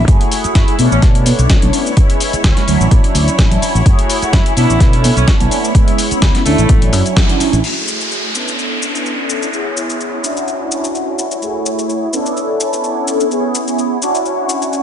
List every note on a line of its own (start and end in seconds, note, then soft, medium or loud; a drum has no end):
0.07 0.16 F#2 medium
0.07 0.74 A3 medium
0.07 7.63 E4 medium
0.07 0.74 E4 medium
0.07 0.75 F#4 medium
0.07 0.75 G#4 medium
0.07 7.63 C#5 medium
0.07 kick loud
0.07 closed hi-hat medium
0.07 shaker soft
0.21 closed hi-hat soft
0.32 open hi-hat loud
0.32 shaker medium
0.44 muted fingered electric bass stroke soft
0.44 closed hi-hat soft
0.44 shaker soft
0.44 shaker medium
0.55 0.63 F#2 loud
0.55 0.84 E4 medium
0.55 kick loud
0.55 snare loud
0.55 closed hi-hat medium
0.55 shaker soft
0.68 closed hi-hat soft
0.78 0.87 B2 medium
0.78 1.92 A3 medium
0.78 1.93 B3 medium
0.78 1.93 C#4 medium
0.78 1.93 D4 loud
0.78 open hi-hat medium
0.78 shaker medium
0.91 0.98 A1 medium
0.91 1.03 C#4 medium
0.91 shaker soft
1.02 1.31 B2 loud
1.02 kick loud
1.02 snare soft
1.02 closed hi-hat medium
1.02 shaker soft
1.15 closed hi-hat medium
1.26 open hi-hat loud
1.26 high conga medium
1.26 shaker medium
1.39 1.45 B1 loud
1.39 closed hi-hat soft
1.39 shaker soft
1.50 kick loud
1.50 snare loud
1.50 closed hi-hat medium
1.50 shaker soft
1.62 1.69 B1 medium
1.62 closed hi-hat soft
1.62 high conga medium
1.62 low conga medium
1.73 open hi-hat medium
1.73 shaker medium
1.86 shaker soft
1.96 2.63 G#3 medium
1.96 2.63 B3 medium
1.96 2.64 C#4 medium
1.96 2.64 E4 medium
1.96 kick loud
1.96 closed hi-hat medium
1.96 shaker soft
2.10 closed hi-hat medium
2.20 open hi-hat loud
2.20 shaker medium
2.33 muted fingered electric bass stroke soft
2.33 closed hi-hat soft
2.33 shaker medium
2.33 shaker soft
2.44 2.52 C#2 loud
2.44 2.73 C#4 medium
2.44 kick loud
2.44 snare loud
2.44 closed hi-hat medium
2.44 shaker soft
2.57 snare soft
2.57 closed hi-hat medium
2.67 2.75 D2 medium
2.67 3.81 F#3 loud
2.67 3.81 C#4 medium
2.67 3.82 D4 medium
2.67 3.82 E4 loud
2.67 open hi-hat medium
2.67 shaker medium
2.80 2.87 A1 medium
2.80 shaker medium
2.80 shaker soft
2.91 2.99 A1 medium
2.91 kick loud
2.91 closed hi-hat medium
2.91 high conga medium
2.91 shaker soft
3.04 closed hi-hat medium
3.15 3.27 D2 loud
3.15 open hi-hat loud
3.15 shaker medium
3.28 muted fingered electric bass stroke soft
3.28 closed hi-hat soft
3.28 shaker soft
3.39 3.61 A1 medium
3.39 kick medium
3.39 snare loud
3.39 closed hi-hat medium
3.39 shaker soft
3.51 closed hi-hat medium
3.51 low conga medium
3.62 muted fingered electric bass stroke soft
3.62 open hi-hat medium
3.62 shaker loud
3.62 shaker medium
3.75 3.82 A1 medium
3.75 shaker soft
3.85 3.94 F#2 loud
3.85 4.52 A3 medium
3.85 4.52 E4 medium
3.85 4.53 F#4 medium
3.85 4.53 G#4 medium
3.85 kick loud
3.85 closed hi-hat medium
3.85 shaker soft
3.99 closed hi-hat medium
4.10 open hi-hat loud
4.10 shaker medium
4.22 muted fingered electric bass stroke soft
4.22 closed hi-hat soft
4.22 shaker medium
4.22 shaker soft
4.33 4.41 F#2 loud
4.33 4.56 E4 medium
4.33 kick loud
4.33 snare loud
4.33 closed hi-hat medium
4.33 shaker soft
4.46 closed hi-hat medium
4.56 4.65 B2 medium
4.56 5.70 A3 medium
4.56 5.71 B3 medium
4.56 5.71 C#4 medium
4.56 5.71 D4 loud
4.56 5.14 E4 medium
4.56 open hi-hat medium
4.56 shaker medium
4.69 4.76 A1 loud
4.69 shaker medium
4.69 shaker soft
4.80 5.09 B2 loud
4.80 kick loud
4.80 snare soft
4.80 closed hi-hat medium
4.80 shaker soft
4.93 closed hi-hat medium
5.04 open hi-hat medium
5.04 high conga medium
5.04 shaker medium
5.04 shaker loud
5.17 5.23 B1 loud
5.17 5.24 C#4 medium
5.17 closed hi-hat soft
5.17 shaker medium
5.17 shaker soft
5.28 5.36 C#4 medium
5.28 kick loud
5.28 snare loud
5.28 closed hi-hat medium
5.28 shaker soft
5.40 5.47 B1 medium
5.40 closed hi-hat medium
5.40 high conga medium
5.40 low conga medium
5.51 open hi-hat medium
5.51 shaker loud
5.51 shaker medium
5.64 shaker soft
5.74 6.41 G#3 medium
5.74 6.41 B3 medium
5.74 6.42 C#4 medium
5.74 6.42 E4 medium
5.74 kick loud
5.74 closed hi-hat medium
5.74 shaker soft
5.88 closed hi-hat medium
5.98 open hi-hat loud
5.98 shaker loud
5.98 shaker medium
6.11 muted fingered electric bass stroke soft
6.11 closed hi-hat soft
6.11 shaker soft
6.11 shaker medium
6.22 6.30 C#2 loud
6.22 kick loud
6.22 snare loud
6.22 closed hi-hat medium
6.22 shaker soft
6.35 snare soft
6.35 closed hi-hat medium
6.45 6.54 D2 medium
6.45 7.59 F#3 medium
6.45 6.93 A3 medium
6.45 7.59 C#4 medium
6.45 7.60 D4 medium
6.45 7.60 E4 loud
6.45 open hi-hat medium
6.45 shaker medium
6.45 shaker loud
6.58 6.65 A1 medium
6.58 closed hi-hat soft
6.58 shaker medium
6.58 shaker soft
6.69 6.93 A1 medium
6.69 kick loud
6.69 closed hi-hat medium
6.69 high conga medium
6.69 shaker soft
6.82 closed hi-hat medium
6.93 7.01 F#2 medium
6.93 open hi-hat loud
6.93 shaker medium
7.06 closed hi-hat soft
7.06 shaker soft
7.16 kick loud
7.16 snare loud
7.16 closed hi-hat medium
7.16 shaker soft
7.29 closed hi-hat medium
7.29 low conga medium
7.40 muted fingered electric bass stroke soft
7.40 open hi-hat medium
7.40 shaker loud
7.40 shaker medium
7.53 7.60 A1 medium
7.53 closed hi-hat soft
7.53 shaker medium
7.53 shaker soft
7.63 8.30 A3 medium
7.63 8.30 E4 medium
7.63 14.83 E4 medium
7.63 8.31 F#4 medium
7.63 8.31 G#4 medium
7.63 14.83 C#5 medium
7.63 crash medium
7.63 downlifter medium
7.63 shaker soft
7.88 shaker medium
8.01 shaker soft
8.12 shaker soft
8.34 9.48 B3 medium
8.34 9.48 C#4 medium
8.34 9.49 D4 medium
8.34 9.49 A4 loud
8.34 shaker medium
8.48 shaker soft
8.59 shaker soft
8.82 shaker medium
8.95 shaker soft
9.06 shaker soft
9.30 shaker medium
9.42 shaker soft
9.52 10.19 B3 medium
9.52 10.19 C#4 medium
9.52 10.20 E4 medium
9.52 10.20 G#4 medium
9.52 shaker soft
9.77 shaker medium
9.90 shaker soft
10.01 shaker soft
10.23 11.37 C#4 medium
10.23 11.37 D4 medium
10.23 11.38 E4 medium
10.23 11.38 F#4 loud
10.23 shaker medium
10.37 shaker soft
10.48 shaker soft
10.71 shaker medium
10.84 shaker soft
10.95 shaker soft
11.19 shaker medium
11.31 shaker soft
11.41 12.08 A3 medium
11.41 12.08 E4 medium
11.41 12.08 F#4 medium
11.41 12.09 G#4 medium
11.41 shaker soft
11.66 shaker medium
11.79 shaker soft
11.89 shaker soft
12.12 13.26 B3 medium
12.12 13.26 C#4 medium
12.12 13.27 D4 medium
12.12 13.27 A4 loud
12.12 shaker medium
12.26 shaker soft
12.37 shaker soft
12.60 shaker medium
12.73 shaker soft
12.84 shaker soft
13.07 shaker medium
13.20 shaker soft
13.30 13.97 B3 medium
13.30 13.97 C#4 medium
13.30 13.97 E4 medium
13.30 13.98 G#4 medium
13.30 shaker soft
13.55 shaker medium
13.68 shaker soft
13.78 shaker soft
14.01 14.83 C#4 medium
14.01 14.83 D4 medium
14.01 14.83 E4 medium
14.01 14.83 F#4 loud
14.01 shaker medium
14.15 shaker soft
14.26 shaker soft
14.49 shaker medium
14.62 shaker soft
14.73 shaker soft